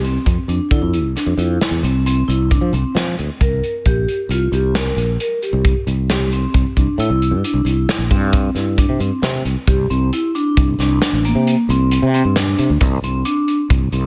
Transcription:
0.00 0.17 C2 medium
0.04 0.36 C4 medium
0.04 closed hi-hat soft
0.26 0.36 F2 medium
0.26 kick medium
0.26 closed hi-hat medium
0.48 0.58 F2 medium
0.48 0.65 D4 medium
0.48 closed hi-hat medium
0.71 0.81 D3 medium
0.71 1.03 E4 medium
0.71 kick medium
0.71 closed hi-hat medium
0.82 1.04 F2 medium
0.93 closed hi-hat medium
1.04 1.14 C2 medium
1.16 1.32 D4 medium
1.16 snare soft
1.16 closed hi-hat medium
1.26 1.37 F2 medium
1.37 1.57 F2 medium
1.37 1.70 E4 medium
1.37 closed hi-hat medium
1.61 snare loud
1.61 closed hi-hat medium
1.71 1.81 E2 medium
1.83 2.22 C2 medium
1.83 1.99 C4 medium
1.83 closed hi-hat soft
2.06 2.22 C4 medium
2.06 closed hi-hat medium
2.28 2.57 C2 medium
2.28 2.44 E4 medium
2.28 closed hi-hat soft
2.51 2.67 D4 medium
2.51 kick medium
2.51 closed hi-hat medium
2.61 2.71 F3 medium
2.73 2.83 C2 medium
2.73 3.05 C4 medium
2.73 closed hi-hat soft
2.95 3.15 F3 medium
2.95 snare loud
2.95 closed hi-hat medium
3.19 3.28 D2 medium
3.19 closed hi-hat soft
3.41 3.60 C2 medium
3.41 3.72 A#4 medium
3.41 kick medium
3.41 closed hi-hat medium
3.64 closed hi-hat soft
3.86 4.05 A#1 medium
3.86 4.18 G4 medium
3.86 kick medium
3.86 closed hi-hat medium
4.08 closed hi-hat medium
4.29 4.49 C2 medium
4.29 4.47 F4 medium
4.29 closed hi-hat medium
4.52 4.91 C2 medium
4.52 4.69 G4 medium
4.52 closed hi-hat medium
4.75 5.07 A#4 medium
4.75 snare loud
4.75 closed hi-hat medium
4.96 5.16 A#1 medium
4.96 closed hi-hat medium
5.20 5.36 A#4 medium
5.20 closed hi-hat medium
5.42 5.74 G4 medium
5.42 closed hi-hat medium
5.53 5.73 C2 medium
5.65 kick medium
5.65 closed hi-hat medium
5.87 6.45 C2 medium
5.87 closed hi-hat medium
6.10 6.26 G4 medium
6.10 snare medium
6.10 closed hi-hat medium
6.32 6.64 C4 medium
6.32 closed hi-hat soft
6.54 6.64 C2 medium
6.54 kick medium
6.54 closed hi-hat medium
6.77 6.86 C2 medium
6.77 6.93 D4 medium
6.77 kick medium
6.77 closed hi-hat medium
6.98 7.08 A2 medium
6.98 7.31 E4 medium
6.98 closed hi-hat medium
7.10 7.33 C2 medium
7.22 closed hi-hat medium
7.31 7.42 G2 medium
7.44 7.60 D4 medium
7.44 closed hi-hat medium
7.54 7.64 C2 medium
7.65 7.85 C2 medium
7.65 7.98 E4 medium
7.65 closed hi-hat medium
7.89 snare medium
7.89 closed hi-hat medium
7.98 8.09 A#1 medium
8.11 8.50 G2 medium
8.11 8.27 C4 medium
8.11 kick medium
8.11 closed hi-hat medium
8.33 8.50 C4 medium
8.33 kick loud
8.33 closed hi-hat medium
8.55 8.84 G2 medium
8.55 8.72 E4 medium
8.55 snare soft
8.55 closed hi-hat medium
8.78 8.94 D4 medium
8.78 kick medium
8.78 closed hi-hat medium
8.89 8.99 C3 medium
9.00 9.10 G2 medium
9.00 9.32 C4 medium
9.00 closed hi-hat medium
9.22 9.42 C3 medium
9.22 snare medium
9.22 closed hi-hat medium
9.45 9.55 C2 medium
9.45 closed hi-hat medium
9.67 9.87 C2 medium
9.67 9.84 G4 medium
9.67 kick medium
9.67 closed hi-hat medium
9.67 shaker medium
9.90 10.10 C2 medium
9.90 10.06 C4 medium
9.90 closed hi-hat soft
10.13 10.29 E4 medium
10.13 closed hi-hat medium
10.35 10.66 D4 medium
10.35 closed hi-hat medium
10.35 shaker soft
10.57 10.77 C2 medium
10.57 kick medium
10.57 closed hi-hat medium
10.57 shaker soft
10.79 10.98 C2 medium
10.79 10.96 D4 medium
10.79 snare soft
10.79 closed hi-hat medium
11.02 11.18 D4 medium
11.02 snare medium
11.02 closed hi-hat medium
11.13 11.32 A1 medium
11.25 11.56 A#3 medium
11.25 closed hi-hat medium
11.25 shaker soft
11.35 11.55 C3 medium
11.47 closed hi-hat medium
11.47 shaker soft
11.69 11.98 C2 medium
11.69 12.01 C4 medium
11.69 closed hi-hat medium
11.91 closed hi-hat medium
11.91 shaker soft
12.02 12.22 C3 medium
12.14 12.30 C4 medium
12.14 closed hi-hat medium
12.25 12.54 G2 medium
12.36 12.68 D4 medium
12.36 snare loud
12.36 closed hi-hat medium
12.36 shaker soft
12.58 12.68 C3 medium
12.58 closed hi-hat medium
12.70 12.79 D2 medium
12.81 13.00 C2 loud
12.81 kick medium
12.81 closed hi-hat medium
12.81 shaker medium
13.03 13.22 C2 medium
13.03 13.19 C4 medium
13.03 closed hi-hat medium
13.25 13.57 D4 medium
13.25 closed hi-hat medium
13.48 closed hi-hat medium
13.48 shaker soft
13.70 13.90 C2 medium
13.70 kick loud
13.70 closed hi-hat medium
13.70 shaker soft
13.92 14.06 C2 medium
13.92 14.06 C4 medium
13.92 closed hi-hat medium

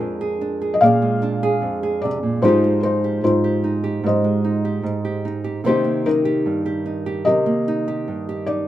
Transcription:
0.00 0.81 F2 soft
0.00 1.01 G#3 soft
0.00 0.40 D4 soft
0.00 1.18 D4 soft
0.00 1.19 F4 soft
0.00 0.20 G#4 soft
0.00 0.79 G#4 medium
0.00 0.78 A#4 medium
0.21 0.61 G#4 soft
0.41 1.22 D4 soft
0.62 1.42 G#4 soft
0.74 0.81 D#5 medium
0.81 1.62 A#2 medium
0.81 2.39 G#4 medium
0.81 2.00 D5 medium
0.81 2.05 F5 medium
1.02 2.43 G#3 soft
1.23 2.38 D4 soft
1.43 1.82 G#4 medium
1.62 2.41 F2 medium
1.83 2.38 G#4 soft
2.02 2.23 C3 soft
2.02 2.43 D5 medium
2.23 2.43 A#2 soft
2.42 3.22 G#2 medium
2.42 5.61 F3 medium
2.42 2.63 G#3 soft
2.42 3.23 D#4 soft
2.42 2.83 D#4 soft
2.42 3.23 F4 soft
2.42 3.04 G4 medium
2.42 2.80 C5 medium
2.64 4.23 G#3 soft
2.83 3.63 D#4 soft
2.83 3.20 C5 medium
3.04 3.44 G4 soft
3.24 4.02 G#2 medium
3.24 4.81 D#4 soft
3.24 4.81 F4 soft
3.24 4.05 C5 medium
3.44 3.83 G4 soft
3.64 4.44 D#4 soft
3.84 4.64 G4 soft
4.04 4.82 G#2 medium
4.04 5.63 G4 soft
4.04 5.63 C5 soft
4.04 5.22 D#5 medium
4.24 5.65 G#3 soft
4.45 5.25 D#4 soft
4.65 5.04 G4 soft
4.83 5.60 G#2 soft
5.05 5.43 G4 soft
5.25 5.66 D#4 soft
5.44 5.60 G4 soft
5.64 6.45 C3 medium
5.64 8.68 D#3 soft
5.64 5.83 A#3 soft
5.64 6.05 D#4 soft
5.64 6.24 G4 medium
5.64 6.07 C5 medium
5.69 6.06 D#4 soft
5.69 6.06 G4 medium
5.84 7.45 A#3 soft
6.06 6.85 D#4 soft
6.06 7.64 D#4 soft
6.06 7.25 G4 soft
6.06 7.26 A#4 medium
6.25 6.64 G4 medium
6.46 7.27 G2 soft
6.66 7.05 G4 soft
6.86 7.67 D#4 soft
7.06 7.87 G4 soft
7.25 8.07 C3 medium
7.25 8.68 G4 medium
7.25 8.68 A#4 medium
7.25 8.42 D#5 medium
7.46 8.68 A#3 soft
7.68 8.46 D#4 soft
7.88 8.28 G4 medium
8.08 8.68 G2 soft
8.29 8.66 G4 soft
8.46 8.68 D#4 soft
8.46 8.68 D5 medium

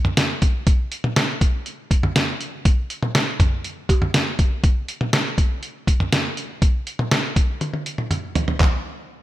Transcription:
0.05 mid tom loud
0.17 snare loud
0.17 closed hi-hat medium
0.42 kick loud
0.42 closed hi-hat medium
0.67 kick loud
0.67 closed hi-hat medium
0.92 closed hi-hat medium
1.04 mid tom medium
1.16 snare loud
1.16 closed hi-hat medium
1.41 kick loud
1.41 closed hi-hat medium
1.66 closed hi-hat medium
1.91 kick medium
1.91 closed hi-hat medium
2.03 mid tom loud
2.16 snare loud
2.16 closed hi-hat medium
2.41 closed hi-hat medium
2.65 kick loud
2.65 closed hi-hat medium
2.90 closed hi-hat medium
3.03 mid tom medium
3.15 snare loud
3.15 closed hi-hat medium
3.40 kick loud
3.40 closed hi-hat medium
3.40 mid tom loud
3.64 closed hi-hat medium
3.89 kick medium
3.89 closed hi-hat medium
3.89 cowbell medium
4.02 mid tom loud
4.14 snare loud
4.14 closed hi-hat medium
4.39 kick medium
4.39 closed hi-hat medium
4.64 kick loud
4.64 closed hi-hat medium
4.88 closed hi-hat medium
5.01 mid tom medium
5.13 snare loud
5.13 closed hi-hat medium
5.38 kick medium
5.38 closed hi-hat medium
5.63 closed hi-hat medium
5.87 kick medium
5.87 closed hi-hat medium
6.00 mid tom medium
6.12 snare loud
6.12 closed hi-hat medium
6.37 closed hi-hat medium
6.62 kick loud
6.62 closed hi-hat medium
6.87 closed hi-hat medium
6.99 mid tom medium
7.11 snare loud
7.11 closed hi-hat medium
7.36 kick medium
7.36 closed hi-hat medium
7.61 closed hi-hat medium
7.61 high tom medium
7.73 high tom medium
7.86 closed hi-hat medium
7.98 mid tom medium
8.11 closed hi-hat medium
8.11 mid tom medium
8.35 closed hi-hat medium
8.35 floor tom loud
8.48 floor tom medium
8.60 kick loud
8.60 clap medium
8.60 floor tom loud

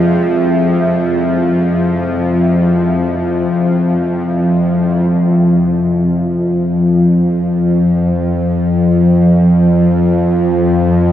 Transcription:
0.00 5.08 F2 medium
0.00 5.07 F3 medium
0.00 5.10 C4 medium
0.00 5.10 F4 medium
0.00 5.09 G#4 medium
0.00 5.14 E5 medium
5.08 11.12 F2 medium
5.08 11.12 F3 medium

